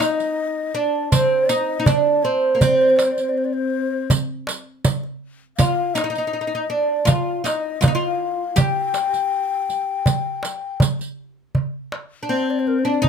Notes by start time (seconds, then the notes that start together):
0.00 D#4 D#5, riq, darbuka tek
0.20 riq
0.75 D4 D5
1.12 C4 C5, riq, darbuka dum
1.49 D#4 D#5, riq
1.80 D#4
1.86 D4 D5, riq, darbuka dum
2.07 darbuka ka
2.23 C4 C5
2.55 A#3
2.61 C4 C5, riq, darbuka dum
2.67 D5
2.76 C5
2.82 D5
2.90 C5
2.97 D5, riq, darbuka tek
3.05 C5
3.11 D5
3.18 C5, riq
3.29 D5
3.38 C5
3.45 D5
3.53 C5
4.10 riq, darbuka dum
4.47 riq, darbuka tek
4.85 riq, darbuka dum
5.03 darbuka ka
5.57 F4 F5, riq, darbuka dum
5.94 D#4 D#5, riq, darbuka tek
6.04 D#4
6.10 D#4
6.15 D#4, riq
6.27 D#4
6.33 D#4
6.41 D#4
6.47 D#4
6.55 D#4
6.70 D4 D5
7.05 F4, riq, darbuka dum
7.09 F5
7.44 D#4 D#5, riq, darbuka tek
7.81 F4 F5, riq, darbuka dum
7.88 D#4
7.95 F4 F5
8.01 darbuka ka
8.56 G4 G5, riq, darbuka dum
8.94 riq, darbuka tek
9.14 riq, darbuka ka
9.69 riq, darbuka ka
10.06 riq, darbuka dum
10.43 riq, darbuka tek
10.80 riq, darbuka dum
10.99 riq, darbuka ka
11.55 darbuka dum
11.92 darbuka tek
12.23 D4
12.29 C4 C5
12.50 D5
12.59 C5
12.67 A#4, darbuka ka
12.79 C5
12.85 D4 D5
13.02 D#4, darbuka dum